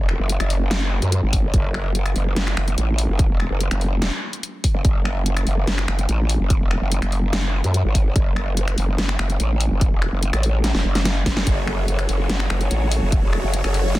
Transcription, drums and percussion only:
0.09 finger snap
0.29 closed hi-hat
0.40 finger snap, closed hi-hat
0.50 open hi-hat
0.71 snare, closed hi-hat
1.02 closed hi-hat
1.12 closed hi-hat
1.33 kick, open hi-hat
1.54 kick, closed hi-hat
1.74 finger snap
1.95 closed hi-hat
2.06 finger snap, closed hi-hat
2.16 open hi-hat
2.36 snare, closed hi-hat
2.47 finger snap
2.57 finger snap
2.68 closed hi-hat
2.78 closed hi-hat
2.98 open hi-hat
3.19 kick, closed hi-hat
3.40 finger snap
3.61 closed hi-hat
3.71 finger snap, closed hi-hat
3.81 open hi-hat
4.02 snare, closed hi-hat
4.33 closed hi-hat
4.43 closed hi-hat
4.64 kick, open hi-hat
4.85 kick, closed hi-hat
5.05 finger snap
5.26 closed hi-hat
5.37 finger snap, closed hi-hat
5.47 open hi-hat
5.67 snare, closed hi-hat
5.78 finger snap
5.88 finger snap
5.99 closed hi-hat
6.09 closed hi-hat
6.29 open hi-hat
6.50 kick, closed hi-hat
6.71 finger snap
6.92 closed hi-hat
7.02 finger snap, closed hi-hat
7.12 open hi-hat
7.33 snare, closed hi-hat
7.64 closed hi-hat
7.74 closed hi-hat
7.95 kick, open hi-hat
8.16 kick, closed hi-hat
8.36 finger snap
8.57 closed hi-hat
8.68 finger snap, closed hi-hat
8.78 open hi-hat
8.98 snare, closed hi-hat
9.09 finger snap
9.19 finger snap
9.30 closed hi-hat
9.40 closed hi-hat
9.61 open hi-hat
9.81 kick, closed hi-hat
10.02 finger snap
10.23 closed hi-hat
10.33 finger snap, closed hi-hat
10.43 open hi-hat
10.64 snare, closed hi-hat
10.75 snare
10.95 snare, closed hi-hat
11.05 snare, closed hi-hat
11.26 kick, snare, open hi-hat
11.37 snare
11.47 kick, closed hi-hat
11.67 finger snap
11.88 closed hi-hat
11.99 finger snap, closed hi-hat
12.09 open hi-hat
12.29 snare, closed hi-hat
12.40 finger snap
12.50 finger snap
12.61 closed hi-hat
12.71 closed hi-hat
12.92 open hi-hat
13.12 kick, closed hi-hat
13.33 finger snap
13.54 closed hi-hat
13.64 finger snap, closed hi-hat
13.74 open hi-hat
13.95 snare, closed hi-hat

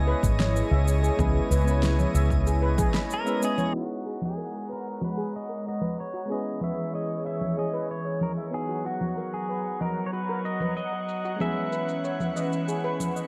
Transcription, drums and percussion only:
0.23 kick, shaker
0.40 snare, low conga, shaker
0.56 shaker
0.88 shaker
1.04 shaker
1.19 kick, low conga, shaker
1.52 shaker
1.68 shaker
1.83 snare, shaker
1.99 low conga, shaker
2.15 shaker
2.30 kick, shaker
2.47 shaker
2.78 kick, low conga, shaker
2.94 snare, shaker
3.11 shaker
3.27 shaker
3.42 shaker
3.58 low conga, shaker
3.74 shaker
4.06 shaker
4.22 low conga, shaker
4.70 shaker
4.86 shaker
5.02 low conga, shaker
5.34 shaker
5.50 shaker
5.66 shaker
5.81 low conga
5.98 shaker
6.14 shaker
6.30 shaker
6.61 low conga, shaker
6.77 shaker
6.94 shaker
7.26 shaker
7.41 low conga, shaker
7.58 shaker
7.90 shaker
8.06 shaker
8.21 low conga, shaker
8.53 shaker
8.70 shaker
8.85 shaker
9.01 low conga
9.17 shaker
9.34 shaker
9.50 shaker
9.81 low conga, shaker
9.97 shaker
10.13 shaker
10.45 shaker
10.60 low conga, shaker
10.77 shaker
11.09 shaker
11.25 shaker
11.40 low conga, shaker
11.73 shaker
11.89 shaker
12.05 shaker
12.20 low conga, shaker
12.37 shaker
12.53 shaker
12.68 shaker
13.00 low conga, shaker
13.16 shaker

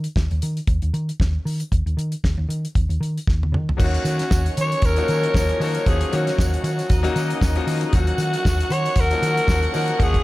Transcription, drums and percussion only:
0.04 closed hi-hat
0.16 kick, snare
0.31 closed hi-hat
0.42 closed hi-hat
0.57 closed hi-hat
0.67 kick, closed hi-hat
0.82 closed hi-hat
0.94 closed hi-hat
1.09 closed hi-hat
1.20 kick, snare
1.47 open hi-hat
1.60 closed hi-hat
1.72 kick, closed hi-hat
1.87 closed hi-hat
1.99 closed hi-hat
2.12 closed hi-hat
2.24 kick, snare
2.50 closed hi-hat
2.65 closed hi-hat
2.75 kick, closed hi-hat
2.90 closed hi-hat
3.03 closed hi-hat
3.18 closed hi-hat
3.27 kick, snare
3.43 high tom
3.54 mid tom
3.69 floor tom
3.80 kick, crash, tambourine
3.94 closed hi-hat
4.05 closed hi-hat, tambourine
4.19 snare, closed hi-hat, tambourine
4.31 kick, snare, tambourine
4.46 closed hi-hat
4.57 closed hi-hat, tambourine
4.72 closed hi-hat
4.82 kick, closed hi-hat, tambourine
4.96 closed hi-hat, tambourine
5.08 closed hi-hat, tambourine
5.23 closed hi-hat
5.34 kick, snare, tambourine
5.49 closed hi-hat
5.61 open hi-hat, tambourine
5.75 closed hi-hat, tambourine
5.86 kick, closed hi-hat, tambourine
6.01 closed hi-hat
6.13 closed hi-hat, tambourine
6.27 snare, closed hi-hat, tambourine
6.39 kick, snare, tambourine
6.54 closed hi-hat
6.64 closed hi-hat, tambourine
6.79 closed hi-hat, tambourine
6.90 kick, closed hi-hat, tambourine
7.04 closed hi-hat, tambourine
7.16 closed hi-hat, tambourine
7.30 closed hi-hat
7.41 kick, snare, tambourine
7.55 closed hi-hat
7.68 open hi-hat, tambourine
7.81 closed hi-hat, tambourine
7.93 kick, closed hi-hat, tambourine
8.07 closed hi-hat
8.18 closed hi-hat, tambourine
8.33 closed hi-hat, tambourine
8.45 kick, snare, tambourine
8.60 closed hi-hat
8.70 closed hi-hat, tambourine
8.86 closed hi-hat
8.96 kick, closed hi-hat, tambourine
9.11 closed hi-hat, tambourine
9.23 closed hi-hat, tambourine
9.37 closed hi-hat
9.48 kick, snare, tambourine
9.63 closed hi-hat
9.74 open hi-hat, tambourine
9.88 closed hi-hat
10.00 kick, closed hi-hat, tambourine
10.14 kick, closed hi-hat

